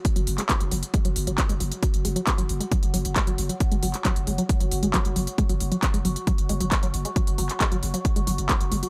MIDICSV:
0, 0, Header, 1, 5, 480
1, 0, Start_track
1, 0, Tempo, 444444
1, 53, Time_signature, 4, 2, 24, 8
1, 9602, End_track
2, 0, Start_track
2, 0, Title_t, "Synth drone"
2, 0, Program_c, 0, 95
2, 0, Note_on_c, 0, 54, 82
2, 0, Note_on_c, 0, 66, 81
2, 9602, Note_off_c, 0, 54, 0
2, 9602, Note_off_c, 0, 66, 0
2, 9602, End_track
3, 0, Start_track
3, 0, Title_t, "Synth arpeggio sound"
3, 0, Program_c, 1, 84
3, 173, Note_on_c, 1, 54, 75
3, 223, Note_off_c, 1, 54, 0
3, 413, Note_on_c, 1, 56, 79
3, 463, Note_off_c, 1, 56, 0
3, 533, Note_on_c, 1, 54, 82
3, 583, Note_off_c, 1, 54, 0
3, 773, Note_on_c, 1, 54, 78
3, 823, Note_off_c, 1, 54, 0
3, 1012, Note_on_c, 1, 56, 83
3, 1063, Note_off_c, 1, 56, 0
3, 1133, Note_on_c, 1, 54, 76
3, 1183, Note_off_c, 1, 54, 0
3, 1373, Note_on_c, 1, 54, 77
3, 1423, Note_off_c, 1, 54, 0
3, 1613, Note_on_c, 1, 56, 76
3, 1663, Note_off_c, 1, 56, 0
3, 1732, Note_on_c, 1, 54, 74
3, 1783, Note_off_c, 1, 54, 0
3, 1971, Note_on_c, 1, 54, 86
3, 2022, Note_off_c, 1, 54, 0
3, 2212, Note_on_c, 1, 56, 78
3, 2262, Note_off_c, 1, 56, 0
3, 2333, Note_on_c, 1, 54, 80
3, 2383, Note_off_c, 1, 54, 0
3, 2573, Note_on_c, 1, 54, 81
3, 2623, Note_off_c, 1, 54, 0
3, 2813, Note_on_c, 1, 56, 75
3, 2863, Note_off_c, 1, 56, 0
3, 2932, Note_on_c, 1, 54, 81
3, 2983, Note_off_c, 1, 54, 0
3, 3172, Note_on_c, 1, 54, 77
3, 3223, Note_off_c, 1, 54, 0
3, 3412, Note_on_c, 1, 56, 84
3, 3463, Note_off_c, 1, 56, 0
3, 3533, Note_on_c, 1, 54, 78
3, 3583, Note_off_c, 1, 54, 0
3, 3773, Note_on_c, 1, 54, 72
3, 3823, Note_off_c, 1, 54, 0
3, 4013, Note_on_c, 1, 56, 77
3, 4063, Note_off_c, 1, 56, 0
3, 4133, Note_on_c, 1, 54, 77
3, 4183, Note_off_c, 1, 54, 0
3, 4372, Note_on_c, 1, 54, 82
3, 4423, Note_off_c, 1, 54, 0
3, 4612, Note_on_c, 1, 56, 75
3, 4663, Note_off_c, 1, 56, 0
3, 4734, Note_on_c, 1, 54, 79
3, 4783, Note_off_c, 1, 54, 0
3, 4974, Note_on_c, 1, 54, 73
3, 5023, Note_off_c, 1, 54, 0
3, 5214, Note_on_c, 1, 56, 76
3, 5263, Note_off_c, 1, 56, 0
3, 5333, Note_on_c, 1, 54, 80
3, 5383, Note_off_c, 1, 54, 0
3, 5574, Note_on_c, 1, 54, 74
3, 5623, Note_off_c, 1, 54, 0
3, 5813, Note_on_c, 1, 56, 84
3, 5863, Note_off_c, 1, 56, 0
3, 5934, Note_on_c, 1, 54, 76
3, 5983, Note_off_c, 1, 54, 0
3, 6174, Note_on_c, 1, 54, 79
3, 6223, Note_off_c, 1, 54, 0
3, 6414, Note_on_c, 1, 56, 77
3, 6463, Note_off_c, 1, 56, 0
3, 6533, Note_on_c, 1, 54, 75
3, 6583, Note_off_c, 1, 54, 0
3, 6773, Note_on_c, 1, 54, 80
3, 6823, Note_off_c, 1, 54, 0
3, 7013, Note_on_c, 1, 56, 77
3, 7063, Note_off_c, 1, 56, 0
3, 7134, Note_on_c, 1, 54, 77
3, 7183, Note_off_c, 1, 54, 0
3, 7374, Note_on_c, 1, 54, 77
3, 7423, Note_off_c, 1, 54, 0
3, 7615, Note_on_c, 1, 56, 76
3, 7664, Note_off_c, 1, 56, 0
3, 7733, Note_on_c, 1, 54, 87
3, 7783, Note_off_c, 1, 54, 0
3, 7974, Note_on_c, 1, 54, 81
3, 8023, Note_off_c, 1, 54, 0
3, 8213, Note_on_c, 1, 56, 82
3, 8263, Note_off_c, 1, 56, 0
3, 8335, Note_on_c, 1, 54, 79
3, 8384, Note_off_c, 1, 54, 0
3, 8574, Note_on_c, 1, 54, 76
3, 8623, Note_off_c, 1, 54, 0
3, 8814, Note_on_c, 1, 56, 76
3, 8863, Note_off_c, 1, 56, 0
3, 8933, Note_on_c, 1, 54, 77
3, 8983, Note_off_c, 1, 54, 0
3, 9173, Note_on_c, 1, 54, 83
3, 9223, Note_off_c, 1, 54, 0
3, 9413, Note_on_c, 1, 56, 75
3, 9463, Note_off_c, 1, 56, 0
3, 9534, Note_on_c, 1, 54, 75
3, 9583, Note_off_c, 1, 54, 0
3, 9602, End_track
4, 0, Start_track
4, 0, Title_t, "808-style bass"
4, 0, Program_c, 2, 38
4, 175, Note_on_c, 2, 30, 78
4, 287, Note_off_c, 2, 30, 0
4, 293, Note_on_c, 2, 30, 96
4, 412, Note_off_c, 2, 30, 0
4, 654, Note_on_c, 2, 30, 78
4, 766, Note_off_c, 2, 30, 0
4, 773, Note_on_c, 2, 30, 102
4, 891, Note_off_c, 2, 30, 0
4, 1133, Note_on_c, 2, 30, 74
4, 1246, Note_off_c, 2, 30, 0
4, 1252, Note_on_c, 2, 30, 102
4, 1367, Note_off_c, 2, 30, 0
4, 1373, Note_on_c, 2, 30, 85
4, 1490, Note_off_c, 2, 30, 0
4, 1613, Note_on_c, 2, 30, 74
4, 1726, Note_off_c, 2, 30, 0
4, 1733, Note_on_c, 2, 30, 99
4, 1851, Note_off_c, 2, 30, 0
4, 2094, Note_on_c, 2, 30, 76
4, 2206, Note_off_c, 2, 30, 0
4, 2213, Note_on_c, 2, 30, 97
4, 2331, Note_off_c, 2, 30, 0
4, 2574, Note_on_c, 2, 30, 77
4, 2687, Note_off_c, 2, 30, 0
4, 2693, Note_on_c, 2, 30, 97
4, 2812, Note_off_c, 2, 30, 0
4, 3054, Note_on_c, 2, 30, 74
4, 3167, Note_off_c, 2, 30, 0
4, 3173, Note_on_c, 2, 30, 100
4, 3287, Note_off_c, 2, 30, 0
4, 3294, Note_on_c, 2, 30, 82
4, 3411, Note_off_c, 2, 30, 0
4, 3534, Note_on_c, 2, 30, 76
4, 3646, Note_off_c, 2, 30, 0
4, 3653, Note_on_c, 2, 30, 101
4, 3771, Note_off_c, 2, 30, 0
4, 4014, Note_on_c, 2, 30, 78
4, 4126, Note_off_c, 2, 30, 0
4, 4133, Note_on_c, 2, 30, 99
4, 4251, Note_off_c, 2, 30, 0
4, 4494, Note_on_c, 2, 30, 77
4, 4606, Note_off_c, 2, 30, 0
4, 4613, Note_on_c, 2, 30, 99
4, 4731, Note_off_c, 2, 30, 0
4, 4973, Note_on_c, 2, 30, 75
4, 5086, Note_off_c, 2, 30, 0
4, 5092, Note_on_c, 2, 30, 99
4, 5207, Note_off_c, 2, 30, 0
4, 5214, Note_on_c, 2, 30, 82
4, 5330, Note_off_c, 2, 30, 0
4, 5454, Note_on_c, 2, 30, 78
4, 5567, Note_off_c, 2, 30, 0
4, 5573, Note_on_c, 2, 30, 102
4, 5691, Note_off_c, 2, 30, 0
4, 5934, Note_on_c, 2, 30, 78
4, 6047, Note_off_c, 2, 30, 0
4, 6054, Note_on_c, 2, 30, 101
4, 6172, Note_off_c, 2, 30, 0
4, 6414, Note_on_c, 2, 30, 77
4, 6526, Note_off_c, 2, 30, 0
4, 6533, Note_on_c, 2, 30, 99
4, 6651, Note_off_c, 2, 30, 0
4, 6894, Note_on_c, 2, 30, 76
4, 7006, Note_off_c, 2, 30, 0
4, 7013, Note_on_c, 2, 30, 103
4, 7127, Note_off_c, 2, 30, 0
4, 7134, Note_on_c, 2, 30, 84
4, 7251, Note_off_c, 2, 30, 0
4, 7374, Note_on_c, 2, 30, 78
4, 7486, Note_off_c, 2, 30, 0
4, 7493, Note_on_c, 2, 30, 102
4, 7611, Note_off_c, 2, 30, 0
4, 7854, Note_on_c, 2, 30, 77
4, 7967, Note_off_c, 2, 30, 0
4, 7973, Note_on_c, 2, 30, 96
4, 8092, Note_off_c, 2, 30, 0
4, 8334, Note_on_c, 2, 30, 75
4, 8447, Note_off_c, 2, 30, 0
4, 8453, Note_on_c, 2, 30, 102
4, 8571, Note_off_c, 2, 30, 0
4, 8814, Note_on_c, 2, 30, 74
4, 8927, Note_off_c, 2, 30, 0
4, 8933, Note_on_c, 2, 30, 99
4, 9047, Note_off_c, 2, 30, 0
4, 9054, Note_on_c, 2, 30, 84
4, 9171, Note_off_c, 2, 30, 0
4, 9294, Note_on_c, 2, 30, 77
4, 9406, Note_off_c, 2, 30, 0
4, 9413, Note_on_c, 2, 30, 104
4, 9531, Note_off_c, 2, 30, 0
4, 9602, End_track
5, 0, Start_track
5, 0, Title_t, "Drums"
5, 52, Note_on_c, 9, 42, 85
5, 53, Note_on_c, 9, 36, 119
5, 160, Note_off_c, 9, 42, 0
5, 161, Note_off_c, 9, 36, 0
5, 173, Note_on_c, 9, 42, 56
5, 281, Note_off_c, 9, 42, 0
5, 292, Note_on_c, 9, 46, 111
5, 400, Note_off_c, 9, 46, 0
5, 413, Note_on_c, 9, 39, 38
5, 413, Note_on_c, 9, 42, 55
5, 521, Note_off_c, 9, 39, 0
5, 521, Note_off_c, 9, 42, 0
5, 533, Note_on_c, 9, 36, 117
5, 533, Note_on_c, 9, 39, 123
5, 533, Note_on_c, 9, 42, 82
5, 641, Note_off_c, 9, 36, 0
5, 641, Note_off_c, 9, 39, 0
5, 641, Note_off_c, 9, 42, 0
5, 653, Note_on_c, 9, 42, 54
5, 761, Note_off_c, 9, 42, 0
5, 772, Note_on_c, 9, 46, 99
5, 880, Note_off_c, 9, 46, 0
5, 893, Note_on_c, 9, 42, 55
5, 1001, Note_off_c, 9, 42, 0
5, 1012, Note_on_c, 9, 42, 80
5, 1013, Note_on_c, 9, 36, 118
5, 1120, Note_off_c, 9, 42, 0
5, 1121, Note_off_c, 9, 36, 0
5, 1133, Note_on_c, 9, 42, 55
5, 1241, Note_off_c, 9, 42, 0
5, 1252, Note_on_c, 9, 46, 111
5, 1360, Note_off_c, 9, 46, 0
5, 1373, Note_on_c, 9, 42, 56
5, 1481, Note_off_c, 9, 42, 0
5, 1493, Note_on_c, 9, 36, 127
5, 1493, Note_on_c, 9, 39, 123
5, 1493, Note_on_c, 9, 42, 87
5, 1601, Note_off_c, 9, 36, 0
5, 1601, Note_off_c, 9, 39, 0
5, 1601, Note_off_c, 9, 42, 0
5, 1613, Note_on_c, 9, 42, 56
5, 1721, Note_off_c, 9, 42, 0
5, 1732, Note_on_c, 9, 46, 94
5, 1840, Note_off_c, 9, 46, 0
5, 1853, Note_on_c, 9, 42, 55
5, 1961, Note_off_c, 9, 42, 0
5, 1972, Note_on_c, 9, 42, 81
5, 1973, Note_on_c, 9, 36, 124
5, 2080, Note_off_c, 9, 42, 0
5, 2081, Note_off_c, 9, 36, 0
5, 2093, Note_on_c, 9, 42, 54
5, 2201, Note_off_c, 9, 42, 0
5, 2212, Note_on_c, 9, 46, 112
5, 2320, Note_off_c, 9, 46, 0
5, 2334, Note_on_c, 9, 42, 54
5, 2442, Note_off_c, 9, 42, 0
5, 2453, Note_on_c, 9, 36, 124
5, 2453, Note_on_c, 9, 39, 118
5, 2453, Note_on_c, 9, 42, 82
5, 2561, Note_off_c, 9, 36, 0
5, 2561, Note_off_c, 9, 39, 0
5, 2561, Note_off_c, 9, 42, 0
5, 2574, Note_on_c, 9, 42, 54
5, 2682, Note_off_c, 9, 42, 0
5, 2693, Note_on_c, 9, 46, 96
5, 2801, Note_off_c, 9, 46, 0
5, 2814, Note_on_c, 9, 42, 52
5, 2922, Note_off_c, 9, 42, 0
5, 2933, Note_on_c, 9, 36, 125
5, 2933, Note_on_c, 9, 42, 78
5, 3041, Note_off_c, 9, 36, 0
5, 3041, Note_off_c, 9, 42, 0
5, 3054, Note_on_c, 9, 42, 54
5, 3162, Note_off_c, 9, 42, 0
5, 3173, Note_on_c, 9, 46, 110
5, 3281, Note_off_c, 9, 46, 0
5, 3294, Note_on_c, 9, 42, 54
5, 3402, Note_off_c, 9, 42, 0
5, 3413, Note_on_c, 9, 36, 123
5, 3413, Note_on_c, 9, 39, 118
5, 3413, Note_on_c, 9, 42, 82
5, 3521, Note_off_c, 9, 36, 0
5, 3521, Note_off_c, 9, 39, 0
5, 3521, Note_off_c, 9, 42, 0
5, 3533, Note_on_c, 9, 42, 55
5, 3641, Note_off_c, 9, 42, 0
5, 3653, Note_on_c, 9, 46, 97
5, 3761, Note_off_c, 9, 46, 0
5, 3774, Note_on_c, 9, 42, 54
5, 3882, Note_off_c, 9, 42, 0
5, 3892, Note_on_c, 9, 42, 80
5, 3893, Note_on_c, 9, 36, 124
5, 4000, Note_off_c, 9, 42, 0
5, 4001, Note_off_c, 9, 36, 0
5, 4013, Note_on_c, 9, 42, 51
5, 4121, Note_off_c, 9, 42, 0
5, 4132, Note_on_c, 9, 46, 110
5, 4240, Note_off_c, 9, 46, 0
5, 4253, Note_on_c, 9, 39, 35
5, 4253, Note_on_c, 9, 42, 50
5, 4361, Note_off_c, 9, 39, 0
5, 4361, Note_off_c, 9, 42, 0
5, 4373, Note_on_c, 9, 36, 120
5, 4373, Note_on_c, 9, 39, 109
5, 4373, Note_on_c, 9, 42, 79
5, 4481, Note_off_c, 9, 36, 0
5, 4481, Note_off_c, 9, 39, 0
5, 4481, Note_off_c, 9, 42, 0
5, 4494, Note_on_c, 9, 42, 51
5, 4602, Note_off_c, 9, 42, 0
5, 4613, Note_on_c, 9, 46, 97
5, 4721, Note_off_c, 9, 46, 0
5, 4733, Note_on_c, 9, 42, 51
5, 4841, Note_off_c, 9, 42, 0
5, 4853, Note_on_c, 9, 36, 122
5, 4853, Note_on_c, 9, 42, 77
5, 4961, Note_off_c, 9, 36, 0
5, 4961, Note_off_c, 9, 42, 0
5, 4973, Note_on_c, 9, 42, 53
5, 5081, Note_off_c, 9, 42, 0
5, 5092, Note_on_c, 9, 46, 113
5, 5200, Note_off_c, 9, 46, 0
5, 5214, Note_on_c, 9, 42, 51
5, 5322, Note_off_c, 9, 42, 0
5, 5333, Note_on_c, 9, 36, 121
5, 5333, Note_on_c, 9, 39, 116
5, 5333, Note_on_c, 9, 42, 77
5, 5441, Note_off_c, 9, 36, 0
5, 5441, Note_off_c, 9, 39, 0
5, 5441, Note_off_c, 9, 42, 0
5, 5454, Note_on_c, 9, 42, 53
5, 5562, Note_off_c, 9, 42, 0
5, 5573, Note_on_c, 9, 46, 91
5, 5681, Note_off_c, 9, 46, 0
5, 5694, Note_on_c, 9, 42, 51
5, 5802, Note_off_c, 9, 42, 0
5, 5813, Note_on_c, 9, 36, 117
5, 5813, Note_on_c, 9, 42, 75
5, 5921, Note_off_c, 9, 36, 0
5, 5921, Note_off_c, 9, 42, 0
5, 5934, Note_on_c, 9, 42, 53
5, 6042, Note_off_c, 9, 42, 0
5, 6053, Note_on_c, 9, 46, 106
5, 6161, Note_off_c, 9, 46, 0
5, 6174, Note_on_c, 9, 42, 49
5, 6282, Note_off_c, 9, 42, 0
5, 6293, Note_on_c, 9, 36, 118
5, 6293, Note_on_c, 9, 39, 116
5, 6293, Note_on_c, 9, 42, 78
5, 6401, Note_off_c, 9, 36, 0
5, 6401, Note_off_c, 9, 39, 0
5, 6401, Note_off_c, 9, 42, 0
5, 6414, Note_on_c, 9, 42, 49
5, 6522, Note_off_c, 9, 42, 0
5, 6533, Note_on_c, 9, 46, 92
5, 6641, Note_off_c, 9, 46, 0
5, 6654, Note_on_c, 9, 42, 49
5, 6762, Note_off_c, 9, 42, 0
5, 6773, Note_on_c, 9, 36, 115
5, 6773, Note_on_c, 9, 42, 75
5, 6881, Note_off_c, 9, 36, 0
5, 6881, Note_off_c, 9, 42, 0
5, 6894, Note_on_c, 9, 42, 51
5, 7002, Note_off_c, 9, 42, 0
5, 7013, Note_on_c, 9, 46, 106
5, 7121, Note_off_c, 9, 46, 0
5, 7134, Note_on_c, 9, 42, 53
5, 7242, Note_off_c, 9, 42, 0
5, 7253, Note_on_c, 9, 36, 118
5, 7253, Note_on_c, 9, 39, 113
5, 7253, Note_on_c, 9, 42, 80
5, 7361, Note_off_c, 9, 36, 0
5, 7361, Note_off_c, 9, 39, 0
5, 7361, Note_off_c, 9, 42, 0
5, 7374, Note_on_c, 9, 42, 51
5, 7482, Note_off_c, 9, 42, 0
5, 7493, Note_on_c, 9, 46, 90
5, 7601, Note_off_c, 9, 46, 0
5, 7614, Note_on_c, 9, 42, 51
5, 7722, Note_off_c, 9, 42, 0
5, 7733, Note_on_c, 9, 36, 111
5, 7733, Note_on_c, 9, 42, 78
5, 7841, Note_off_c, 9, 36, 0
5, 7841, Note_off_c, 9, 42, 0
5, 7854, Note_on_c, 9, 42, 52
5, 7962, Note_off_c, 9, 42, 0
5, 7973, Note_on_c, 9, 46, 106
5, 8081, Note_off_c, 9, 46, 0
5, 8094, Note_on_c, 9, 39, 35
5, 8094, Note_on_c, 9, 42, 50
5, 8202, Note_off_c, 9, 39, 0
5, 8202, Note_off_c, 9, 42, 0
5, 8213, Note_on_c, 9, 36, 109
5, 8214, Note_on_c, 9, 39, 120
5, 8214, Note_on_c, 9, 42, 75
5, 8321, Note_off_c, 9, 36, 0
5, 8322, Note_off_c, 9, 39, 0
5, 8322, Note_off_c, 9, 42, 0
5, 8334, Note_on_c, 9, 42, 49
5, 8442, Note_off_c, 9, 42, 0
5, 8453, Note_on_c, 9, 46, 87
5, 8561, Note_off_c, 9, 46, 0
5, 8574, Note_on_c, 9, 42, 51
5, 8682, Note_off_c, 9, 42, 0
5, 8693, Note_on_c, 9, 36, 113
5, 8693, Note_on_c, 9, 42, 74
5, 8801, Note_off_c, 9, 36, 0
5, 8801, Note_off_c, 9, 42, 0
5, 8814, Note_on_c, 9, 42, 49
5, 8922, Note_off_c, 9, 42, 0
5, 8933, Note_on_c, 9, 46, 102
5, 9041, Note_off_c, 9, 46, 0
5, 9054, Note_on_c, 9, 42, 50
5, 9162, Note_off_c, 9, 42, 0
5, 9173, Note_on_c, 9, 36, 117
5, 9173, Note_on_c, 9, 39, 121
5, 9173, Note_on_c, 9, 42, 75
5, 9281, Note_off_c, 9, 36, 0
5, 9281, Note_off_c, 9, 39, 0
5, 9281, Note_off_c, 9, 42, 0
5, 9294, Note_on_c, 9, 42, 52
5, 9402, Note_off_c, 9, 42, 0
5, 9414, Note_on_c, 9, 46, 89
5, 9522, Note_off_c, 9, 46, 0
5, 9534, Note_on_c, 9, 42, 50
5, 9602, Note_off_c, 9, 42, 0
5, 9602, End_track
0, 0, End_of_file